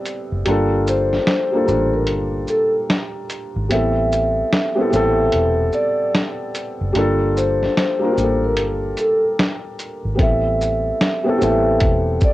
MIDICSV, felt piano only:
0, 0, Header, 1, 2, 480
1, 0, Start_track
1, 0, Tempo, 810811
1, 270, Time_signature, 4, 2, 24, 8
1, 7302, End_track
2, 0, Start_track
2, 0, Title_t, "Felt piano"
2, 0, Program_c, 0, 0
2, 0, Control_c, 0, 64, 127
2, 0, Note_on_c, 0, 55, 89
2, 0, Note_on_c, 0, 59, 78
2, 0, Note_on_c, 0, 60, 90
2, 0, Note_on_c, 0, 64, 81
2, 0, Note_on_c, 0, 69, 90
2, 267, Note_off_c, 0, 55, 0
2, 267, Note_on_c, 0, 55, 88
2, 275, Note_on_c, 0, 58, 73
2, 279, Control_c, 0, 64, 0
2, 281, Note_off_c, 0, 69, 0
2, 282, Note_off_c, 0, 59, 0
2, 282, Note_on_c, 0, 62, 81
2, 283, Note_off_c, 0, 64, 0
2, 284, Note_off_c, 0, 60, 0
2, 289, Note_on_c, 0, 65, 77
2, 300, Note_on_c, 0, 69, 90
2, 375, Control_c, 0, 64, 127
2, 847, Note_off_c, 0, 55, 0
2, 851, Note_off_c, 0, 58, 0
2, 855, Note_off_c, 0, 62, 0
2, 858, Note_off_c, 0, 65, 0
2, 864, Note_off_c, 0, 69, 0
2, 896, Note_on_c, 0, 55, 68
2, 904, Note_on_c, 0, 58, 72
2, 910, Note_on_c, 0, 62, 71
2, 920, Note_on_c, 0, 65, 65
2, 925, Note_on_c, 0, 69, 81
2, 966, Note_off_c, 0, 55, 0
2, 972, Note_off_c, 0, 58, 0
2, 974, Note_on_c, 0, 55, 72
2, 981, Note_off_c, 0, 62, 0
2, 981, Note_on_c, 0, 58, 72
2, 987, Note_off_c, 0, 65, 0
2, 990, Note_on_c, 0, 62, 65
2, 995, Note_off_c, 0, 69, 0
2, 996, Note_on_c, 0, 65, 71
2, 1005, Note_on_c, 0, 69, 80
2, 1893, Note_off_c, 0, 55, 0
2, 1896, Note_off_c, 0, 58, 0
2, 1900, Note_off_c, 0, 62, 0
2, 1904, Note_off_c, 0, 65, 0
2, 1908, Note_off_c, 0, 69, 0
2, 2185, Note_on_c, 0, 55, 70
2, 2190, Note_on_c, 0, 59, 63
2, 2198, Control_c, 0, 64, 0
2, 2198, Note_on_c, 0, 60, 64
2, 2206, Note_on_c, 0, 64, 65
2, 2216, Note_on_c, 0, 69, 76
2, 2306, Control_c, 0, 64, 127
2, 2766, Note_off_c, 0, 55, 0
2, 2769, Note_off_c, 0, 59, 0
2, 2773, Note_off_c, 0, 60, 0
2, 2777, Note_off_c, 0, 64, 0
2, 2781, Note_off_c, 0, 69, 0
2, 2813, Note_on_c, 0, 55, 91
2, 2820, Note_on_c, 0, 59, 81
2, 2830, Note_on_c, 0, 60, 82
2, 2840, Note_on_c, 0, 64, 83
2, 2846, Note_on_c, 0, 69, 91
2, 2893, Note_off_c, 0, 55, 0
2, 2902, Note_off_c, 0, 59, 0
2, 2902, Note_on_c, 0, 55, 101
2, 2908, Note_off_c, 0, 60, 0
2, 2911, Note_on_c, 0, 59, 82
2, 2912, Note_off_c, 0, 64, 0
2, 2916, Note_off_c, 0, 69, 0
2, 2917, Note_on_c, 0, 60, 88
2, 2925, Note_on_c, 0, 64, 85
2, 2932, Note_on_c, 0, 69, 109
2, 3817, Note_off_c, 0, 55, 0
2, 3821, Note_off_c, 0, 59, 0
2, 3824, Note_off_c, 0, 60, 0
2, 3828, Note_off_c, 0, 64, 0
2, 3832, Note_off_c, 0, 69, 0
2, 4102, Note_on_c, 0, 55, 91
2, 4110, Note_on_c, 0, 58, 72
2, 4118, Control_c, 0, 64, 0
2, 4119, Note_on_c, 0, 62, 83
2, 4127, Note_on_c, 0, 65, 75
2, 4135, Note_on_c, 0, 69, 98
2, 4238, Control_c, 0, 64, 127
2, 4685, Note_off_c, 0, 55, 0
2, 4689, Note_off_c, 0, 58, 0
2, 4693, Note_off_c, 0, 62, 0
2, 4697, Note_off_c, 0, 65, 0
2, 4701, Note_off_c, 0, 69, 0
2, 4731, Note_on_c, 0, 55, 81
2, 4740, Note_on_c, 0, 58, 69
2, 4748, Note_on_c, 0, 62, 65
2, 4757, Note_on_c, 0, 65, 71
2, 4763, Note_on_c, 0, 70, 89
2, 4798, Note_off_c, 0, 55, 0
2, 4805, Note_off_c, 0, 58, 0
2, 4806, Note_on_c, 0, 55, 76
2, 4812, Note_off_c, 0, 62, 0
2, 4814, Note_on_c, 0, 58, 67
2, 4821, Note_on_c, 0, 62, 65
2, 4823, Note_off_c, 0, 65, 0
2, 4831, Note_on_c, 0, 65, 66
2, 4834, Note_off_c, 0, 70, 0
2, 4837, Note_on_c, 0, 67, 72
2, 4878, Note_on_c, 0, 69, 78
2, 4882, Note_off_c, 0, 67, 0
2, 5729, Note_off_c, 0, 55, 0
2, 5733, Note_off_c, 0, 58, 0
2, 5736, Note_off_c, 0, 62, 0
2, 5741, Note_off_c, 0, 65, 0
2, 5764, Note_off_c, 0, 69, 0
2, 6008, Note_on_c, 0, 55, 69
2, 6013, Note_on_c, 0, 59, 62
2, 6021, Note_on_c, 0, 60, 59
2, 6030, Note_on_c, 0, 64, 63
2, 6037, Note_on_c, 0, 69, 70
2, 6038, Control_c, 0, 64, 0
2, 6144, Control_c, 0, 64, 127
2, 6598, Note_off_c, 0, 55, 0
2, 6600, Note_off_c, 0, 59, 0
2, 6604, Note_off_c, 0, 60, 0
2, 6609, Note_off_c, 0, 64, 0
2, 6612, Note_off_c, 0, 69, 0
2, 6651, Note_on_c, 0, 55, 84
2, 6658, Note_on_c, 0, 59, 83
2, 6668, Note_on_c, 0, 60, 79
2, 6676, Note_on_c, 0, 64, 82
2, 6683, Note_on_c, 0, 69, 98
2, 6728, Note_off_c, 0, 55, 0
2, 6736, Note_off_c, 0, 59, 0
2, 6737, Note_on_c, 0, 55, 93
2, 6743, Note_off_c, 0, 60, 0
2, 6745, Note_on_c, 0, 59, 81
2, 6751, Note_off_c, 0, 64, 0
2, 6752, Note_on_c, 0, 60, 85
2, 6754, Note_off_c, 0, 69, 0
2, 6760, Note_on_c, 0, 64, 79
2, 6767, Note_on_c, 0, 69, 95
2, 7302, Note_off_c, 0, 55, 0
2, 7302, Note_off_c, 0, 59, 0
2, 7302, Note_off_c, 0, 60, 0
2, 7302, Note_off_c, 0, 64, 0
2, 7302, Note_off_c, 0, 69, 0
2, 7302, End_track
0, 0, End_of_file